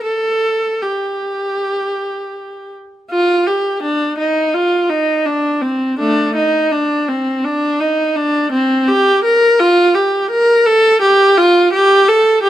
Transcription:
0.03 A4
0.82 G4
3.11 F4
3.47 G4
3.82 D4
4.18 D#4
4.54 F4
4.90 D#4
5.25 D4
5.61 C4
5.99 A3 D4
6.35 D#4
6.72 D4
7.08 C4
7.44 D4
7.80 D#4
8.16 D4
8.52 C4
8.88 G4
9.24 A#4
9.59 F4
9.95 G4
10.30 A#4
10.66 A4
11.02 G4
11.38 F4
11.73 G4
12.08 A4
12.43 G4

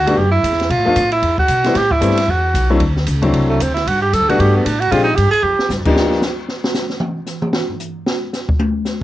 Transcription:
Already playing: D2 F#4
0.06 G3 A3 B3 D4 F#4, ride
0.17 F#2 G4, kick
0.32 E4
0.43 E2, kick, hi-hat pedal, ride
0.52 snare
0.60 snare, ride
0.70 B2 F4, kick, ride
0.78 A2
0.85 F2 F3 A3 B3 D4 F4
0.96 A2, kick, hi-hat pedal, ride
1.12 E4, ride
1.22 E2, kick, ride
1.38 F#4, kick
1.48 B2, hi-hat pedal, ride
1.64 G3 A3 B3 C4 E4, snare, ride
1.75 A2 G4, kick, snare, ride
1.91 E4, kick
2.01 G2 G3 A3 B3 C4 E4, kick, hi-hat pedal, ride
2.10 snare
2.17 snare, ride
2.28 E2 F#4, kick
2.54 B1, kick, hi-hat pedal, ride
2.70 F#3 A3 C4 D4 E4
2.80 D2, kick, ride
2.96 snare
3.06 C#2, kick, hi-hat pedal, ride
3.22 F#3 A3 C4 D4 E4, kick, ride
3.33 C2, kick, ride
3.49 A3
3.60 D2 C4, kick, hi-hat pedal, ride
3.74 E4, snare, ride
3.87 G2 F#4, kick, ride
4.02 G4
4.13 F#2 A4, kick, hi-hat pedal, ride
4.20 D2
4.29 B1 G3 A3 B3 D4 F#4, ride
4.39 G2 G4, kick, ride
4.56 B3
4.66 A2 D4, kick, hi-hat pedal, ride
4.80 F#4, ride
4.91 A#2 F3 G#3 C4 D4 F4 G4, kick, ride
5.04 D#4
5.16 G2 G4, kick, hi-hat pedal, ride
5.31 G#4, muted upright bass stroke, ride
5.43 F2 G4
5.58 muted upright bass stroke, snare
5.69 G2, snare, hi-hat pedal
5.79 F2
5.85 D2 F3 A#3 D4 D#4 G4, kick, crash
5.96 snare
6.11 snare
6.22 snare, hi-hat pedal
6.48 snare
6.64 snare
6.74 snare, hi-hat pedal
6.90 snare
7.00 mid tom
7.26 snare, hi-hat pedal
7.42 mid tom
7.53 snare
7.69 floor tom
7.80 hi-hat pedal
8.06 snare
8.33 snare, hi-hat pedal
8.49 kick
8.59 high tom
8.85 snare, hi-hat pedal

